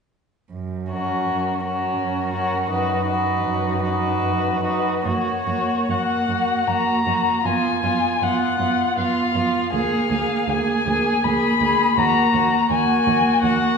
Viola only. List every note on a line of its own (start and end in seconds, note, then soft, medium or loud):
0.91 1.63 C#4 soft
1.65 2.33 C#4 soft
2.35 2.70 C#4 soft
2.70 3.06 D#4 soft
3.08 3.82 D#4 soft
3.83 4.62 D#4 soft
4.64 5.04 D#4 soft
5.05 5.46 A#3 soft
5.47 5.89 A#3 soft
5.89 6.28 A#3 soft
6.29 6.66 A#3 soft
6.68 7.05 A#3 soft
7.06 7.44 A#3 soft
7.45 7.83 B3 soft
7.83 8.21 B3 soft
8.22 8.58 B3 soft
8.59 8.95 B3 soft
8.96 9.33 B3 soft
9.34 9.72 B3 soft
9.73 10.10 A#3 soft
10.11 10.48 A#3 soft
10.49 10.86 A#3 soft
10.87 11.23 A#3 soft
11.23 11.60 A#3 soft
11.61 11.96 A#3 soft
11.97 12.33 A#3 soft
12.34 12.69 A#3 soft
12.70 13.06 A#3 soft
13.07 13.41 A#3 soft
13.42 13.78 A#3 soft